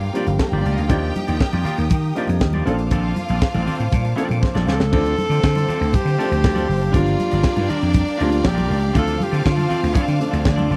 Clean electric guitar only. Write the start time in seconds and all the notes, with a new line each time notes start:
0.02 muted clean electric guitar stroke
0.16 A#3 F4 G4 D5
0.28 muted clean electric guitar stroke
0.41 muted clean electric guitar stroke
0.53 A#3 F4 G4 D5
0.65 A#3 F4 G4 D5
0.79 muted clean electric guitar stroke
0.89 A#3 F4 G4 D5
1.15 muted clean electric guitar stroke
1.27 A#3 F4 G4 D5
1.38 muted clean electric guitar stroke
1.53 A#3 F4 G4 D5
1.65 A#3 F4 G4 D5
1.78 muted clean electric guitar stroke
1.90 muted clean electric guitar stroke
2.04 muted clean electric guitar stroke
2.17 A#3 F4 G4 D5
2.29 muted clean electric guitar stroke
2.41 muted clean electric guitar stroke
2.54 A#3 F4 G4 D5
2.65 C4 F4 A4 D5
2.78 muted clean electric guitar stroke
2.91 C4 F4 A4 D5
3.16 muted clean electric guitar stroke
3.30 C4 F4 A4 D5
3.54 C4 F4 A4 D5
3.66 C4 F4 A4 D5
3.78 muted clean electric guitar stroke
3.92 muted clean electric guitar stroke
4.05 muted clean electric guitar stroke
4.16 C4 F4 A4 D5
4.29 muted clean electric guitar stroke
4.42 muted clean electric guitar stroke
4.55 C4 F4 A4 D5
4.67 C4 F4 A4 D5
4.80 muted clean electric guitar stroke
4.92 C4 F4 A4 D5
5.17 muted clean electric guitar stroke
5.30 C4 F4 A4 D5
5.43 muted clean electric guitar stroke
5.56 C4 F4 A4 D5
5.67 C4 F4 A4 D5
5.81 muted clean electric guitar stroke
5.95 muted clean electric guitar stroke
6.05 muted clean electric guitar stroke
6.19 C4 F4 A4 D5
6.30 muted clean electric guitar stroke
6.44 muted clean electric guitar stroke
6.55 C4 F4 A4 D5
6.69 muted clean electric guitar stroke
6.82 muted clean electric guitar stroke
6.92 D4 F4 A#4 D5
7.19 muted clean electric guitar stroke
7.32 D4 F4 A#4 D5
7.56 D4 F4 A#4 D5
7.68 D4 F4 A#4 D5
7.82 muted clean electric guitar stroke
7.94 muted clean electric guitar stroke
8.05 muted clean electric guitar stroke
8.18 D4 F4 A#4 D5
8.31 muted clean electric guitar stroke
8.42 muted clean electric guitar stroke
8.55 D4 F4 A#4 D5
8.68 D4 F4 A#4 D5
8.80 muted clean electric guitar stroke
8.93 C4 F4 A4 D5
9.18 muted clean electric guitar stroke
9.31 C4 F4 A4 D5
9.43 muted clean electric guitar stroke
9.56 C4 F4 A4 D5
9.69 C4 F4 A4 D5
9.82 muted clean electric guitar stroke
9.92 C4 F4 A4 D5
10.06 muted clean electric guitar stroke
10.18 muted clean electric guitar stroke
10.31 C4 F4 A4 D5
10.45 muted clean electric guitar stroke
10.56 C4 F4 A4 D5
10.70 C4 F4 A4 D5